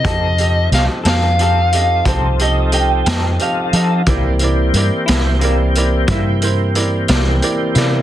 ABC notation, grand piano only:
X:1
M:12/8
L:1/8
Q:3/8=60
K:Cmix
V:1 name="Grand piano"
[GA_e] [GAe] [GAe] [GAe] [GAf] [GAe] [GAf] [GAe] [GAe] [GAe] [GAe] [GAe] | [EBd] [EBd] [EBd] [EBe] [EBd] [EBd] [EBe] [EBc] [EBd] [EBd] [EBd] [EBd] |]